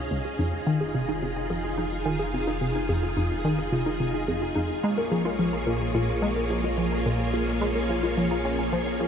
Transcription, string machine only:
Already playing: C#4 G#4 D#5 F5
0.39 D#4 F4
4.83 A#3 F4 C#5

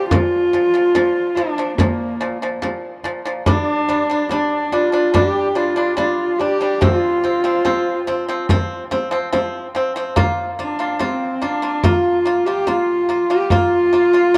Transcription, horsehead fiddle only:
0.09 F4
1.35 D4
1.77 A#3
3.49 D4
4.31 D4
4.72 F4
5.14 G4
5.56 F4
5.97 F4
6.39 G4
6.81 F4
10.60 D4
11.01 C4
11.43 D4
11.84 F4
12.46 G4
12.67 F4
13.31 G4
13.52 F4

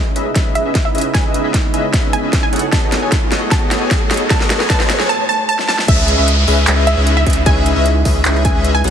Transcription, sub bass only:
Already playing: C#2
0.16 C#2
0.36 C#2
0.65 C#2
0.95 C#2
1.15 C#2
1.44 C#2
1.74 C#2
1.94 C#2
2.23 C#2
2.53 B1
2.72 B1
3.02 B1
3.32 B1
3.51 B1
3.81 B1
4.11 B1
4.30 B1
4.60 B1
4.70 B1
4.99 B1
5.88 C#2
6.18 C#2
6.48 C#2
6.67 C#2
6.97 C#2
7.26 C#2
7.46 C#2
7.76 C#2
8.05 C#2
8.25 C#2
8.55 C#2
8.84 B1

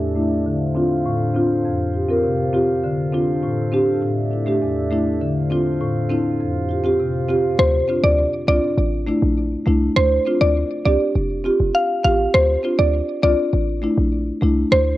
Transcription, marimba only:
Already playing: E2
0.15 A3 D4 E4
0.46 D3
0.75 C4 D4 F4
1.05 A2
1.34 C4 D4 F4
1.65 F2
1.94 F4 G4
2.08 C4 F4 A#4
2.24 C3
2.53 C4 F4 G4
2.84 D3
3.12 C4 D4 F4
3.43 A2
3.72 C4 D4 G4
4.02 A2
4.31 D4 E4
4.46 A3 D4 G4
4.62 E2
4.91 A3 D4 E4
5.21 D3
5.50 C4 D4 F4
5.81 A2
6.10 C4 D4 E4
6.40 F2
6.69 F4 G4
6.84 C4 F4 G4
7.00 C3
7.28 C4 F4 G4
7.88 C4 D4 F4
8.47 C4 D4 F4
9.07 A3 D4 E4
9.66 A3 D4 E4
10.25 C4 D4 F4
10.85 C4 D4 G4
11.44 C4 F4 G4
12.04 C4 F4 G4
12.63 C4 D4 F4
13.23 C4 D4 F4
13.82 A3 D4 E4
14.41 A3 D4 E4

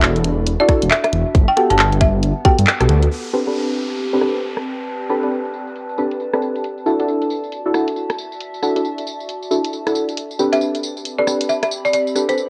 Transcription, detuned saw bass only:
Already playing: E1
0.82 E1
1.13 E1
1.35 G1
1.70 G1
2.58 G2
2.81 B1
2.89 D2

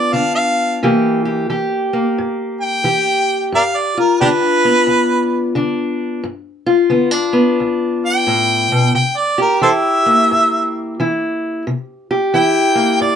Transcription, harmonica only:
Already playing: D5
0.12 F5
0.35 F5
2.61 G5
3.55 A#4 D5 F5
3.77 D5
4.00 A#4
4.21 D4 G4 B4
8.06 G5
8.95 G5
9.17 D5
9.41 A#4
9.62 A4 C5 E5
12.35 G5
13.02 D5

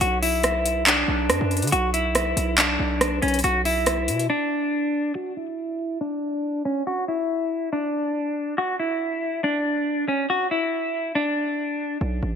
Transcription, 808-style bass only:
0.01 B1
1.08 B1
1.30 F#2
1.41 F#2
1.62 D3
1.72 B1
2.37 B1
2.80 B1
3.22 B1
3.44 B1
4.08 B2
12.01 B1
12.23 A1

